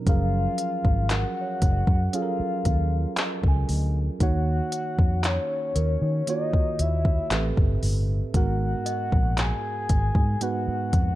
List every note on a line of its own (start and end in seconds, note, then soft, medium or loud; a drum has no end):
0.00 0.25 G#5 soft
0.06 0.46 F#1 loud
0.06 1.56 F3 medium
0.06 1.55 F#3 medium
0.06 1.55 C#4 medium
0.06 1.56 G#4 medium
0.06 1.56 A#4 medium
0.06 1.13 F5 loud
0.06 kick loud
0.06 closed hi-hat medium
0.58 closed hi-hat medium
0.85 1.24 G#1 medium
0.85 kick medium
1.10 3.30 A#4 medium
1.10 2.16 F#5 loud
1.10 clap loud
1.10 closed hi-hat medium
1.41 3.58 C#5 soft
1.62 1.81 F#1 loud
1.62 kick medium
1.62 closed hi-hat medium
1.72 3.16 D#5 soft
1.87 2.07 F#2 medium
1.87 kick medium
2.13 3.62 F#3 medium
2.13 3.62 C#4 medium
2.13 3.63 F4 medium
2.13 3.63 G#4 medium
2.13 2.21 A4 medium
2.13 3.69 F5 loud
2.13 closed hi-hat medium
2.22 3.67 A#4 medium
2.40 muted fingered electric bass stroke soft
2.65 3.04 D#2 medium
2.65 kick medium
2.65 closed hi-hat medium
3.17 4.69 D#5 medium
3.17 clap loud
3.17 closed hi-hat medium
3.44 3.63 C#2 loud
3.44 kick loud
3.48 4.97 G#5 medium
3.69 4.08 D2 medium
3.69 open hi-hat medium
4.20 4.59 D#2 loud
4.20 5.69 D#3 medium
4.20 5.69 A#3 medium
4.20 5.70 D#4 medium
4.20 5.70 F#4 medium
4.20 5.70 C#5 medium
4.20 5.27 F#5 loud
4.20 kick loud
4.20 closed hi-hat medium
4.72 6.92 C#5 medium
4.72 closed hi-hat medium
4.99 5.37 F2 medium
4.99 kick loud
5.24 6.30 C#5 loud
5.24 clap loud
5.24 closed hi-hat medium
5.75 5.95 D#2 medium
5.75 7.78 A#4 medium
5.75 closed hi-hat medium
6.02 6.21 D#3 loud
6.27 7.31 D#3 medium
6.27 7.31 A#3 medium
6.27 7.31 F4 medium
6.27 7.32 F#4 medium
6.27 7.32 C#5 medium
6.27 6.82 D#5 loud
6.27 closed hi-hat medium
6.53 muted fingered electric bass stroke medium
6.53 kick medium
6.79 7.18 D#2 medium
6.79 7.83 E5 loud
6.79 closed hi-hat medium
7.05 kick loud
7.30 7.50 A1 loud
7.30 8.13 A2 medium
7.30 8.14 C4 medium
7.30 8.14 G4 medium
7.30 8.14 A4 medium
7.30 8.15 B4 medium
7.30 clap loud
7.30 closed hi-hat medium
7.57 7.77 G1 medium
7.57 kick loud
7.83 8.22 G1 medium
7.83 open hi-hat medium
8.34 8.73 G#1 loud
8.34 9.83 G#2 medium
8.34 9.83 G#3 medium
8.34 9.83 B3 medium
8.34 9.84 F#4 medium
8.34 9.84 A#4 medium
8.34 9.40 F#5 loud
8.34 kick loud
8.34 closed hi-hat medium
8.86 11.06 D#5 medium
8.86 closed hi-hat medium
9.12 9.51 A#1 loud
9.12 kick medium
9.38 10.43 G#5 loud
9.38 clap loud
9.38 closed hi-hat medium
9.89 10.09 G#1 medium
9.89 kick medium
9.89 closed hi-hat medium
10.15 10.35 G#2 loud
10.15 kick medium
10.40 11.15 G#2 medium
10.40 11.15 G#3 medium
10.40 11.15 B3 medium
10.40 11.15 F#4 medium
10.40 11.15 B4 medium
10.40 11.15 F#5 loud
10.40 closed hi-hat medium
10.67 muted fingered electric bass stroke medium
10.93 11.15 F2 medium
10.93 kick medium
10.93 closed hi-hat medium